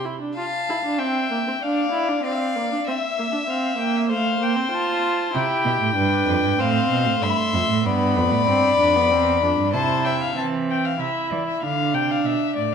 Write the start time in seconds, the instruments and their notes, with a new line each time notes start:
0.05 viola E4
0.21 viola D4
0.35 viola F4, violin F5 A5
0.70 viola E4
0.85 viola D4
0.99 viola C4, violin E5 G5
1.31 viola A#3
1.47 viola C4
1.62 viola D4, violin D5 F5
1.92 viola E4
2.08 viola D4
2.24 viola C4, violin D5 F5
2.32 violin E5
2.39 violin D5
2.56 viola A#3
2.72 viola D4
2.88 viola C4, violin E5
3.18 viola A#3
3.32 viola D4
3.47 viola C4, violin F5
3.78 viola A#3, violin G5
3.97 violin E5
4.09 viola A3, violin C5 F5
4.40 viola A#3, violin G5
4.56 viola C4
4.72 viola F4, violin A5
5.34 cello C3, viola E4, violin G4 G5
5.65 cello B2
5.81 cello A2
5.95 cello G2, viola D4, violin B4
6.27 cello F2
6.43 cello G2
6.58 cello A2, viola C4, violin C5 F5
6.90 cello B2
7.06 cello A2
7.21 cello G2, viola A3, violin E5 C6
7.29 violin B5
7.37 violin C6
7.54 cello F2
7.69 cello A2
7.84 cello G2, viola B3, violin D5 B5
8.16 cello F2
8.31 cello A2
8.47 cello G2, viola C4
8.79 cello F2, viola D4
8.96 viola B3
9.11 cello E2, viola C4
9.42 cello F2, viola D4
9.57 cello G2
9.73 cello C3, viola E4, violin C5 A5
10.05 violin E5 G5
10.21 violin F5
10.36 cello E3, viola C4, violin A5
10.70 violin G5
10.85 violin F5
11.00 cello C3, viola E4, violin E5
11.31 cello E3, violin D5
11.48 violin E5
11.63 cello D3, viola D4, violin F5
11.94 cello C3, violin G5
12.10 violin F5
12.24 cello B2, violin E5
12.56 cello A2, violin D5